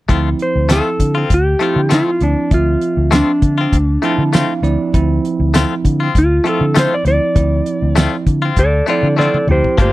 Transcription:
0.09 0.33 D2 medium
0.09 1.22 F3 medium
0.09 0.28 A3 medium
0.09 1.22 C4 medium
0.09 0.28 C4 medium
0.09 1.22 E4 medium
0.09 0.29 F4 medium
0.09 kick loud
0.09 closed hi-hat medium
0.39 0.70 C5 medium
0.39 closed hi-hat medium
0.56 0.79 D2 medium
0.69 0.88 A3 medium
0.69 0.89 C4 medium
0.69 0.89 F4 medium
0.69 1.30 A4 medium
0.69 snare loud
0.69 closed hi-hat medium
0.69 tambourine loud
1.00 1.23 D3 medium
1.00 kick medium
1.00 closed hi-hat medium
1.15 1.34 C4 soft
1.15 1.33 F4 soft
1.30 1.54 D2 medium
1.30 kick medium
1.30 closed hi-hat medium
1.34 1.91 G4 loud
1.59 2.17 F3 medium
1.59 1.79 A3 medium
1.59 2.17 C4 medium
1.59 1.80 C4 medium
1.59 2.17 E4 medium
1.59 1.81 F4 medium
1.59 closed hi-hat medium
1.76 2.00 D3 medium
1.89 2.09 A3 medium
1.89 2.10 C4 medium
1.89 2.10 F4 medium
1.89 snare loud
1.89 closed hi-hat medium
1.89 tambourine loud
1.94 2.22 F4 medium
2.21 2.34 D2 medium
2.21 2.50 F3 medium
2.21 2.50 C4 medium
2.21 2.52 D4 medium
2.21 2.50 E4 medium
2.21 closed hi-hat medium
2.51 2.75 D2 medium
2.51 3.65 F3 medium
2.51 3.65 C4 medium
2.51 3.12 F4 medium
2.51 3.65 E5 medium
2.51 kick loud
2.51 closed hi-hat medium
2.81 closed hi-hat medium
2.97 3.21 D2 medium
3.11 3.30 A3 medium
3.11 3.31 C4 medium
3.11 3.31 F4 medium
3.11 snare loud
3.11 closed hi-hat medium
3.11 tambourine loud
3.15 4.91 D4 loud
3.42 3.66 D3 medium
3.42 kick medium
3.42 closed hi-hat medium
3.58 3.77 C4 soft
3.58 3.75 F4 soft
3.72 3.96 D2 medium
3.72 kick medium
3.72 closed hi-hat medium
4.02 4.60 F3 medium
4.02 4.21 A3 medium
4.02 4.59 C4 medium
4.02 4.22 C4 medium
4.02 4.59 E4 loud
4.02 4.23 F4 medium
4.02 4.31 A5 medium
4.02 closed hi-hat medium
4.18 4.42 D3 medium
4.33 4.52 A3 medium
4.33 4.53 C4 loud
4.33 4.53 F4 medium
4.33 4.61 F5 medium
4.33 snare loud
4.33 closed hi-hat medium
4.33 tambourine loud
4.62 4.75 D2 medium
4.62 4.92 F3 medium
4.62 4.91 C4 medium
4.62 4.92 E4 medium
4.62 4.92 D5 medium
4.62 closed hi-hat medium
4.94 5.17 D2 medium
4.94 6.07 F3 medium
4.94 6.07 C4 medium
4.94 6.07 E4 medium
4.94 kick loud
4.94 closed hi-hat medium
5.25 closed hi-hat medium
5.40 5.63 D2 medium
5.54 5.73 A3 medium
5.54 5.74 C4 medium
5.54 5.74 F4 medium
5.54 snare loud
5.54 closed hi-hat medium
5.54 tambourine loud
5.84 6.08 D3 medium
5.84 kick medium
5.84 closed hi-hat medium
6.00 6.19 C4 soft
6.00 6.18 F4 soft
6.15 6.38 D2 medium
6.15 6.46 F4 loud
6.15 kick medium
6.15 closed hi-hat medium
6.44 7.01 F3 medium
6.44 6.64 A3 medium
6.44 7.01 C4 medium
6.44 6.64 C4 medium
6.44 7.01 E4 medium
6.44 6.65 F4 medium
6.44 closed hi-hat medium
6.49 6.76 A4 medium
6.61 6.85 D3 loud
6.75 6.94 A3 medium
6.75 6.94 C4 medium
6.75 6.95 F4 medium
6.75 snare loud
6.75 closed hi-hat medium
6.75 tambourine loud
6.79 6.93 C5 medium
6.94 7.07 D5 medium
7.05 7.18 D2 medium
7.05 7.34 F3 medium
7.05 7.34 C4 medium
7.05 7.34 E4 medium
7.05 8.24 D5 loud
7.05 closed hi-hat medium
7.35 7.60 D2 medium
7.35 8.49 F3 medium
7.35 8.49 C4 medium
7.35 8.49 E4 medium
7.35 kick loud
7.35 closed hi-hat medium
7.66 closed hi-hat medium
7.82 8.06 D2 medium
7.96 8.15 A3 medium
7.96 8.16 C4 medium
7.96 8.16 F4 loud
7.96 snare loud
7.96 closed hi-hat medium
7.96 tambourine loud
8.27 8.50 D3 medium
8.27 kick medium
8.27 closed hi-hat medium
8.42 8.61 C4 soft
8.42 8.60 F4 soft
8.56 8.80 D2 medium
8.56 8.88 A4 medium
8.56 8.88 D5 loud
8.56 kick medium
8.56 closed hi-hat medium
8.86 9.44 F3 medium
8.86 9.06 A3 medium
8.86 9.44 C4 medium
8.86 9.07 C4 medium
8.86 9.44 E4 medium
8.86 9.07 F4 medium
8.86 9.17 A4 medium
8.86 9.18 D5 medium
8.86 closed hi-hat medium
9.03 9.27 D3 medium
9.17 9.36 A3 medium
9.17 9.37 C4 medium
9.17 9.37 F4 medium
9.17 9.46 A4 medium
9.17 9.48 D5 medium
9.17 snare medium
9.34 high tom medium
9.47 9.60 D2 medium
9.47 9.77 F3 medium
9.47 9.77 C4 medium
9.47 9.77 E4 medium
9.47 9.78 G4 medium
9.47 mid tom medium
9.52 9.79 C5 medium
9.64 floor tom medium
9.78 9.93 G1 loud
9.78 9.93 F3 medium
9.78 9.93 A3 medium
9.78 9.93 A#3 medium
9.78 9.93 D4 medium
9.78 9.93 F4 medium
9.78 9.93 G4 medium
9.78 9.93 C5 medium
9.78 kick loud
9.78 closed hi-hat medium

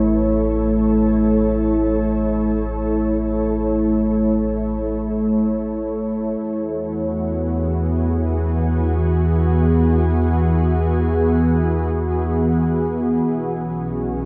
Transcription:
0.00 6.36 A1 medium
0.00 6.41 A3 medium
0.00 7.72 E4 medium
0.00 6.40 A4 medium
0.00 7.48 C#5 medium
6.39 13.21 E2 medium
6.39 13.25 E3 medium
6.57 14.25 F#4 medium
6.78 14.25 B3 medium
7.16 14.25 G#4 medium
13.25 14.25 B1 medium
13.25 14.25 B2 medium
13.39 14.25 C#4 medium
13.50 14.25 F#3 medium

